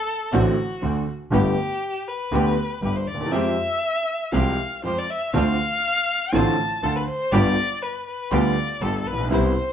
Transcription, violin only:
0, 0, Header, 1, 2, 480
1, 0, Start_track
1, 0, Tempo, 498753
1, 1270, Time_signature, 4, 2, 24, 8
1, 9361, End_track
2, 0, Start_track
2, 0, Title_t, "Violin"
2, 0, Program_c, 0, 40
2, 0, Note_on_c, 0, 69, 97
2, 332, Note_on_c, 0, 66, 82
2, 347, Note_off_c, 0, 69, 0
2, 1040, Note_off_c, 0, 66, 0
2, 1283, Note_on_c, 0, 67, 99
2, 2002, Note_on_c, 0, 71, 77
2, 2017, Note_off_c, 0, 67, 0
2, 2722, Note_off_c, 0, 71, 0
2, 2728, Note_on_c, 0, 71, 80
2, 2845, Note_on_c, 0, 72, 76
2, 2860, Note_off_c, 0, 71, 0
2, 2961, Note_on_c, 0, 74, 87
2, 2976, Note_off_c, 0, 72, 0
2, 3193, Note_on_c, 0, 76, 104
2, 3208, Note_off_c, 0, 74, 0
2, 4167, Note_off_c, 0, 76, 0
2, 4174, Note_on_c, 0, 77, 88
2, 4623, Note_off_c, 0, 77, 0
2, 4665, Note_on_c, 0, 72, 91
2, 4797, Note_on_c, 0, 74, 82
2, 4812, Note_off_c, 0, 72, 0
2, 4909, Note_on_c, 0, 76, 98
2, 4923, Note_off_c, 0, 74, 0
2, 5141, Note_off_c, 0, 76, 0
2, 5146, Note_on_c, 0, 77, 121
2, 6112, Note_on_c, 0, 81, 99
2, 6126, Note_off_c, 0, 77, 0
2, 6582, Note_on_c, 0, 69, 94
2, 6596, Note_off_c, 0, 81, 0
2, 6697, Note_on_c, 0, 71, 77
2, 6712, Note_off_c, 0, 69, 0
2, 6810, Note_off_c, 0, 71, 0
2, 6816, Note_on_c, 0, 72, 97
2, 7048, Note_on_c, 0, 74, 108
2, 7063, Note_off_c, 0, 72, 0
2, 7525, Note_on_c, 0, 71, 86
2, 7540, Note_off_c, 0, 74, 0
2, 7761, Note_off_c, 0, 71, 0
2, 7767, Note_on_c, 0, 71, 78
2, 8014, Note_on_c, 0, 74, 95
2, 8028, Note_off_c, 0, 71, 0
2, 8485, Note_on_c, 0, 69, 87
2, 8499, Note_off_c, 0, 74, 0
2, 8733, Note_on_c, 0, 71, 95
2, 8748, Note_off_c, 0, 69, 0
2, 8962, Note_off_c, 0, 71, 0
2, 8968, Note_on_c, 0, 72, 95
2, 9361, Note_off_c, 0, 72, 0
2, 9361, End_track
0, 0, End_of_file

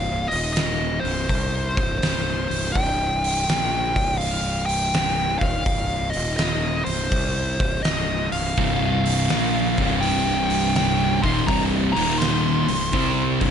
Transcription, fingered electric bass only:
0, 0, Header, 1, 2, 480
1, 0, Start_track
1, 0, Key_signature, -3, "minor"
1, 0, Tempo, 727273
1, 1816, Time_signature, 4, 2, 24, 8
1, 8915, End_track
2, 0, Start_track
2, 0, Title_t, "Fingered electric bass"
2, 0, Program_c, 0, 33
2, 0, Note_on_c, 0, 24, 92
2, 188, Note_off_c, 0, 24, 0
2, 209, Note_on_c, 0, 27, 86
2, 663, Note_off_c, 0, 27, 0
2, 684, Note_on_c, 0, 24, 70
2, 840, Note_off_c, 0, 24, 0
2, 855, Note_on_c, 0, 36, 92
2, 1149, Note_off_c, 0, 36, 0
2, 1174, Note_on_c, 0, 24, 93
2, 1325, Note_off_c, 0, 24, 0
2, 1342, Note_on_c, 0, 24, 73
2, 1633, Note_off_c, 0, 24, 0
2, 1652, Note_on_c, 0, 24, 83
2, 1804, Note_off_c, 0, 24, 0
2, 1818, Note_on_c, 0, 24, 90
2, 2271, Note_off_c, 0, 24, 0
2, 2299, Note_on_c, 0, 34, 98
2, 2592, Note_off_c, 0, 34, 0
2, 2616, Note_on_c, 0, 24, 79
2, 3549, Note_off_c, 0, 24, 0
2, 3575, Note_on_c, 0, 27, 97
2, 3728, Note_off_c, 0, 27, 0
2, 3739, Note_on_c, 0, 24, 80
2, 4033, Note_off_c, 0, 24, 0
2, 4065, Note_on_c, 0, 27, 88
2, 4514, Note_off_c, 0, 27, 0
2, 4532, Note_on_c, 0, 24, 78
2, 4686, Note_off_c, 0, 24, 0
2, 4700, Note_on_c, 0, 36, 80
2, 4993, Note_off_c, 0, 36, 0
2, 5017, Note_on_c, 0, 24, 83
2, 5169, Note_off_c, 0, 24, 0
2, 5179, Note_on_c, 0, 24, 71
2, 5473, Note_off_c, 0, 24, 0
2, 5496, Note_on_c, 0, 24, 72
2, 5648, Note_off_c, 0, 24, 0
2, 5661, Note_on_c, 0, 24, 81
2, 6114, Note_off_c, 0, 24, 0
2, 6140, Note_on_c, 0, 34, 84
2, 6433, Note_off_c, 0, 34, 0
2, 6457, Note_on_c, 0, 24, 93
2, 7389, Note_off_c, 0, 24, 0
2, 7419, Note_on_c, 0, 27, 94
2, 7570, Note_off_c, 0, 27, 0
2, 7582, Note_on_c, 0, 24, 75
2, 7874, Note_off_c, 0, 24, 0
2, 7901, Note_on_c, 0, 27, 84
2, 8351, Note_off_c, 0, 27, 0
2, 8378, Note_on_c, 0, 24, 67
2, 8529, Note_off_c, 0, 24, 0
2, 8536, Note_on_c, 0, 36, 93
2, 8830, Note_off_c, 0, 36, 0
2, 8856, Note_on_c, 0, 24, 89
2, 8915, Note_off_c, 0, 24, 0
2, 8915, End_track
0, 0, End_of_file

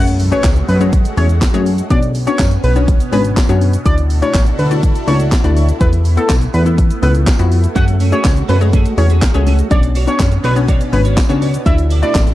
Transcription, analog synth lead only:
0, 0, Header, 1, 2, 480
1, 0, Start_track
1, 0, Key_signature, 3, "minor"
1, 0, Tempo, 487805
1, 1875, Time_signature, 4, 2, 24, 8
1, 12143, End_track
2, 0, Start_track
2, 0, Title_t, "Analog synth lead"
2, 0, Program_c, 0, 81
2, 315, Note_on_c, 0, 73, 90
2, 487, Note_off_c, 0, 73, 0
2, 674, Note_on_c, 0, 71, 81
2, 760, Note_off_c, 0, 71, 0
2, 1154, Note_on_c, 0, 73, 85
2, 1240, Note_off_c, 0, 73, 0
2, 1874, Note_on_c, 0, 74, 103
2, 1960, Note_off_c, 0, 74, 0
2, 2233, Note_on_c, 0, 73, 83
2, 2406, Note_off_c, 0, 73, 0
2, 2595, Note_on_c, 0, 71, 82
2, 2681, Note_off_c, 0, 71, 0
2, 3075, Note_on_c, 0, 71, 87
2, 3161, Note_off_c, 0, 71, 0
2, 3796, Note_on_c, 0, 74, 113
2, 3881, Note_off_c, 0, 74, 0
2, 4155, Note_on_c, 0, 73, 90
2, 4327, Note_off_c, 0, 73, 0
2, 4515, Note_on_c, 0, 71, 82
2, 4601, Note_off_c, 0, 71, 0
2, 4995, Note_on_c, 0, 73, 85
2, 5081, Note_off_c, 0, 73, 0
2, 5715, Note_on_c, 0, 71, 107
2, 5801, Note_off_c, 0, 71, 0
2, 6073, Note_on_c, 0, 69, 78
2, 6246, Note_off_c, 0, 69, 0
2, 6432, Note_on_c, 0, 71, 81
2, 6519, Note_off_c, 0, 71, 0
2, 6914, Note_on_c, 0, 71, 85
2, 7000, Note_off_c, 0, 71, 0
2, 7635, Note_on_c, 0, 78, 110
2, 7721, Note_off_c, 0, 78, 0
2, 7995, Note_on_c, 0, 73, 84
2, 8167, Note_off_c, 0, 73, 0
2, 8354, Note_on_c, 0, 71, 78
2, 8440, Note_off_c, 0, 71, 0
2, 8834, Note_on_c, 0, 73, 83
2, 8920, Note_off_c, 0, 73, 0
2, 9554, Note_on_c, 0, 74, 100
2, 9640, Note_off_c, 0, 74, 0
2, 9917, Note_on_c, 0, 73, 84
2, 10088, Note_off_c, 0, 73, 0
2, 10276, Note_on_c, 0, 71, 81
2, 10361, Note_off_c, 0, 71, 0
2, 10754, Note_on_c, 0, 71, 86
2, 10840, Note_off_c, 0, 71, 0
2, 11474, Note_on_c, 0, 76, 108
2, 11560, Note_off_c, 0, 76, 0
2, 11836, Note_on_c, 0, 74, 87
2, 12008, Note_off_c, 0, 74, 0
2, 12143, End_track
0, 0, End_of_file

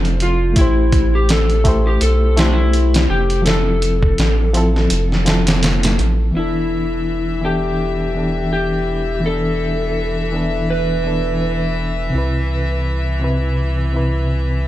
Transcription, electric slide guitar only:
0, 0, Header, 1, 2, 480
1, 0, Start_track
1, 0, Tempo, 722892
1, 378, Time_signature, 4, 2, 24, 8
1, 9746, End_track
2, 0, Start_track
2, 0, Title_t, "Electric slide guitar"
2, 0, Program_c, 0, 29
2, 149, Note_on_c, 0, 65, 94
2, 386, Note_off_c, 0, 65, 0
2, 389, Note_on_c, 0, 64, 105
2, 764, Note_on_c, 0, 67, 91
2, 772, Note_off_c, 0, 64, 0
2, 865, Note_off_c, 0, 67, 0
2, 866, Note_on_c, 0, 69, 111
2, 1241, Note_on_c, 0, 67, 93
2, 1250, Note_off_c, 0, 69, 0
2, 1340, Note_on_c, 0, 69, 107
2, 1343, Note_off_c, 0, 67, 0
2, 1562, Note_off_c, 0, 69, 0
2, 1576, Note_on_c, 0, 64, 95
2, 1626, Note_off_c, 0, 64, 0
2, 1628, Note_on_c, 0, 62, 80
2, 1682, Note_on_c, 0, 64, 95
2, 1683, Note_off_c, 0, 62, 0
2, 2030, Note_off_c, 0, 64, 0
2, 2058, Note_on_c, 0, 67, 103
2, 2294, Note_off_c, 0, 67, 0
2, 2297, Note_on_c, 0, 69, 104
2, 3950, Note_off_c, 0, 69, 0
2, 4227, Note_on_c, 0, 64, 75
2, 4916, Note_off_c, 0, 64, 0
2, 4945, Note_on_c, 0, 67, 82
2, 5653, Note_off_c, 0, 67, 0
2, 5661, Note_on_c, 0, 67, 78
2, 6113, Note_off_c, 0, 67, 0
2, 6147, Note_on_c, 0, 69, 96
2, 7076, Note_off_c, 0, 69, 0
2, 7107, Note_on_c, 0, 71, 80
2, 7796, Note_off_c, 0, 71, 0
2, 9746, End_track
0, 0, End_of_file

